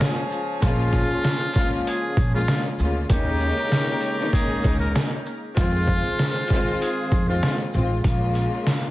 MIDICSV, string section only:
0, 0, Header, 1, 2, 480
1, 0, Start_track
1, 0, Tempo, 618557
1, 483, Time_signature, 4, 2, 24, 8
1, 6912, End_track
2, 0, Start_track
2, 0, Title_t, "String section"
2, 0, Program_c, 0, 48
2, 0, Note_on_c, 0, 49, 98
2, 0, Note_on_c, 0, 56, 96
2, 0, Note_on_c, 0, 58, 89
2, 0, Note_on_c, 0, 65, 115
2, 286, Note_off_c, 0, 49, 0
2, 290, Note_off_c, 0, 56, 0
2, 294, Note_off_c, 0, 58, 0
2, 297, Note_off_c, 0, 65, 0
2, 478, Note_on_c, 0, 49, 98
2, 486, Note_on_c, 0, 56, 94
2, 493, Note_on_c, 0, 58, 94
2, 501, Note_on_c, 0, 65, 115
2, 1039, Note_off_c, 0, 49, 0
2, 1043, Note_off_c, 0, 56, 0
2, 1046, Note_off_c, 0, 58, 0
2, 1050, Note_off_c, 0, 65, 0
2, 1198, Note_on_c, 0, 49, 98
2, 1206, Note_on_c, 0, 56, 97
2, 1213, Note_on_c, 0, 58, 89
2, 1220, Note_on_c, 0, 65, 108
2, 1646, Note_off_c, 0, 49, 0
2, 1650, Note_off_c, 0, 56, 0
2, 1653, Note_off_c, 0, 58, 0
2, 1657, Note_off_c, 0, 65, 0
2, 1809, Note_on_c, 0, 49, 95
2, 1816, Note_on_c, 0, 56, 85
2, 1823, Note_on_c, 0, 58, 89
2, 1831, Note_on_c, 0, 65, 102
2, 1905, Note_off_c, 0, 49, 0
2, 1912, Note_off_c, 0, 56, 0
2, 1915, Note_on_c, 0, 49, 80
2, 1920, Note_off_c, 0, 58, 0
2, 1922, Note_on_c, 0, 56, 81
2, 1927, Note_off_c, 0, 65, 0
2, 1929, Note_on_c, 0, 58, 69
2, 1936, Note_on_c, 0, 65, 97
2, 2142, Note_off_c, 0, 49, 0
2, 2145, Note_off_c, 0, 56, 0
2, 2149, Note_off_c, 0, 58, 0
2, 2152, Note_off_c, 0, 65, 0
2, 2166, Note_on_c, 0, 49, 88
2, 2173, Note_on_c, 0, 56, 67
2, 2180, Note_on_c, 0, 58, 70
2, 2188, Note_on_c, 0, 65, 80
2, 2384, Note_off_c, 0, 49, 0
2, 2391, Note_off_c, 0, 56, 0
2, 2394, Note_off_c, 0, 58, 0
2, 2394, Note_on_c, 0, 49, 104
2, 2398, Note_off_c, 0, 65, 0
2, 2401, Note_on_c, 0, 56, 93
2, 2408, Note_on_c, 0, 58, 95
2, 2415, Note_on_c, 0, 63, 113
2, 3176, Note_off_c, 0, 49, 0
2, 3179, Note_off_c, 0, 56, 0
2, 3183, Note_off_c, 0, 58, 0
2, 3187, Note_off_c, 0, 63, 0
2, 3249, Note_on_c, 0, 49, 99
2, 3256, Note_on_c, 0, 56, 99
2, 3263, Note_on_c, 0, 58, 94
2, 3271, Note_on_c, 0, 63, 106
2, 4128, Note_off_c, 0, 49, 0
2, 4132, Note_off_c, 0, 56, 0
2, 4135, Note_off_c, 0, 58, 0
2, 4139, Note_off_c, 0, 63, 0
2, 4311, Note_on_c, 0, 51, 96
2, 4318, Note_on_c, 0, 56, 92
2, 4324, Note_on_c, 0, 60, 96
2, 4332, Note_on_c, 0, 65, 103
2, 4875, Note_off_c, 0, 51, 0
2, 4879, Note_off_c, 0, 56, 0
2, 4882, Note_off_c, 0, 60, 0
2, 4886, Note_off_c, 0, 65, 0
2, 5043, Note_on_c, 0, 51, 100
2, 5050, Note_on_c, 0, 56, 101
2, 5057, Note_on_c, 0, 60, 103
2, 5064, Note_on_c, 0, 65, 120
2, 5488, Note_off_c, 0, 51, 0
2, 5492, Note_off_c, 0, 56, 0
2, 5495, Note_off_c, 0, 60, 0
2, 5499, Note_off_c, 0, 65, 0
2, 5642, Note_on_c, 0, 51, 97
2, 5649, Note_on_c, 0, 56, 83
2, 5657, Note_on_c, 0, 60, 87
2, 5664, Note_on_c, 0, 65, 96
2, 5749, Note_off_c, 0, 51, 0
2, 5757, Note_off_c, 0, 56, 0
2, 5759, Note_on_c, 0, 51, 81
2, 5764, Note_off_c, 0, 60, 0
2, 5766, Note_on_c, 0, 56, 76
2, 5771, Note_off_c, 0, 65, 0
2, 5774, Note_on_c, 0, 60, 75
2, 5780, Note_on_c, 0, 65, 90
2, 5984, Note_off_c, 0, 51, 0
2, 5987, Note_off_c, 0, 56, 0
2, 5991, Note_off_c, 0, 60, 0
2, 5994, Note_off_c, 0, 65, 0
2, 5994, Note_on_c, 0, 51, 78
2, 6001, Note_on_c, 0, 56, 74
2, 6008, Note_on_c, 0, 60, 71
2, 6016, Note_on_c, 0, 65, 89
2, 6221, Note_off_c, 0, 51, 0
2, 6225, Note_off_c, 0, 56, 0
2, 6226, Note_on_c, 0, 49, 101
2, 6228, Note_off_c, 0, 60, 0
2, 6232, Note_off_c, 0, 65, 0
2, 6233, Note_on_c, 0, 56, 86
2, 6240, Note_on_c, 0, 58, 94
2, 6248, Note_on_c, 0, 65, 104
2, 6912, Note_off_c, 0, 49, 0
2, 6912, Note_off_c, 0, 56, 0
2, 6912, Note_off_c, 0, 58, 0
2, 6912, Note_off_c, 0, 65, 0
2, 6912, End_track
0, 0, End_of_file